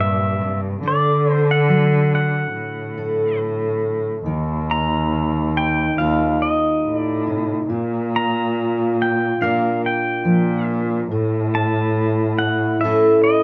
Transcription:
Already playing: cello G2, steel-string acoustic guitar C3 G3 G4
0.00 steel-string acoustic guitar A#2, pedal steel guitar E5
0.41 steel-string acoustic guitar C3
0.83 steel-string acoustic guitar D3 A4, cello D3
0.88 pedal steel guitar D5
1.32 pedal steel guitar C5
1.51 pedal steel guitar F#5
1.68 steel-string acoustic guitar F#3
2.15 pedal steel guitar F#5
2.55 cello A2
2.98 steel-string acoustic guitar A4
4.26 cello D#2, steel-string acoustic guitar D#3, french horn D#4
4.71 pedal steel guitar A#5
5.57 pedal steel guitar G5
5.98 cello D#2, steel-string acoustic guitar F4 G4, pedal steel guitar F5
6.42 pedal steel guitar D#5
6.84 cello A2
6.97 pedal steel guitar D5
7.27 steel-string acoustic guitar C3
7.70 steel-string acoustic guitar A#2, cello A#2, french horn F4
8.16 pedal steel guitar A#5
9.02 pedal steel guitar G5
9.41 cello A#2, steel-string acoustic guitar D4 F4 A#4, pedal steel guitar F5
9.86 pedal steel guitar G5
10.25 cello A#2, steel-string acoustic guitar F3
11.10 steel-string acoustic guitar A2, cello A2, french horn E4
11.55 pedal steel guitar A5
12.39 pedal steel guitar F#5
12.81 cello A2, steel-string acoustic guitar C#4 E4, pedal steel guitar E5
12.85 steel-string acoustic guitar A4
13.24 pedal steel guitar D#5

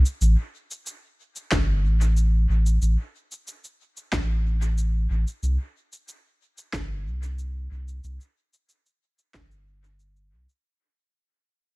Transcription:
0.06 cabasa
0.21 sub bass A1, cabasa
0.71 cabasa
0.86 cabasa
1.36 cabasa
1.52 sub bass G1, kick, snare, cabasa
1.84 sub bass A1
2.01 cabasa
2.17 cabasa
2.49 sub bass A1
2.66 cabasa
2.82 sub bass A1, cabasa
3.32 cabasa
3.47 cabasa
3.64 cabasa
3.97 cabasa
4.12 sub bass A1, kick, snare, cabasa
4.62 cabasa
4.78 cabasa
5.10 sub bass A1
5.27 cabasa
5.43 sub bass C2, cabasa
5.92 cabasa
6.08 cabasa
6.58 cabasa
6.73 sub bass G1, kick, snare, cabasa
7.06 sub bass C2
7.23 cabasa
7.39 cabasa
7.71 sub bass C2
7.88 cabasa
8.04 sub bass C2, cabasa
8.21 cabasa
8.53 cabasa
8.69 cabasa
8.86 cabasa
9.19 cabasa
9.34 sub bass G1, kick, snare, cabasa
9.51 cabasa
9.84 cabasa
9.99 cabasa
10.16 cabasa
10.32 sub bass C2
10.49 cabasa

